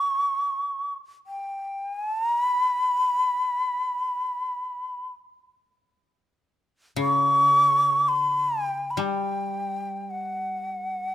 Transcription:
0.00 0.94 C#6 medium
1.27 1.84 G5 medium
1.84 2.06 G#5 medium
2.06 2.28 A5 medium
2.28 2.50 A#5 medium
2.50 5.07 B5 medium
6.96 8.98 C#3 soft
7.01 8.10 C#6 medium
8.08 8.64 B5 medium
8.64 8.92 G5 medium
8.90 9.01 B5 soft
8.97 11.15 G3 soft
8.97 10.12 G5 medium
10.10 11.15 F#5 medium

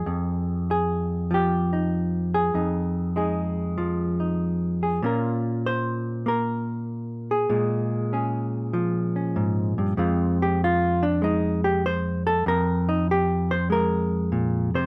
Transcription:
0.00 1.30 F3 medium
0.00 2.53 G#3 soft
0.00 0.71 G#4 soft
0.06 2.53 F2 medium
0.71 1.31 G#4 medium
1.31 2.58 F3 medium
1.31 2.34 G4 medium
1.73 2.51 D#4 soft
2.34 3.16 G#4 medium
2.54 5.01 F2 medium
2.54 3.16 D#4 soft
3.16 5.04 G#3 soft
3.16 4.19 D#4 soft
3.16 4.82 G#4 soft
3.78 5.03 F3 medium
4.20 4.99 D#4 soft
4.83 5.05 G#4 soft
5.02 7.48 A#2 medium
5.02 6.26 A#3 soft
5.02 7.48 C#4 soft
5.02 7.31 F4 soft
5.02 5.66 A#4 soft
5.66 6.27 C5 medium
6.26 7.47 A#3 medium
6.26 7.30 A#4 medium
7.31 8.12 G#4 medium
7.50 9.97 A#2 medium
7.50 9.81 G#3 soft
8.13 9.15 C#4 soft
8.13 10.45 G#4 soft
8.73 9.97 F3 medium
9.16 9.95 C#4 soft
9.36 9.77 G#2 medium
9.78 9.97 G2 medium
9.97 12.45 F2 medium
9.97 11.21 G#3 soft
9.97 11.02 C4 soft
9.97 10.42 F4 soft
10.42 10.60 G4 medium
10.64 11.03 F4 medium
11.03 11.22 D4 medium
11.22 12.51 G#3 medium
11.22 11.64 D#4 medium
11.64 11.83 G4 medium
11.86 12.26 C5 loud
12.27 12.46 A4 loud
12.46 14.86 F2 medium
12.46 12.88 A#4 medium
12.89 13.08 D#4 medium
13.11 13.51 G4 medium
13.51 13.70 C5 medium
13.70 14.86 G#3 medium
13.70 14.74 A#4 medium
14.32 14.73 A#2 medium
14.74 14.86 C3 medium
14.74 14.86 C5 medium

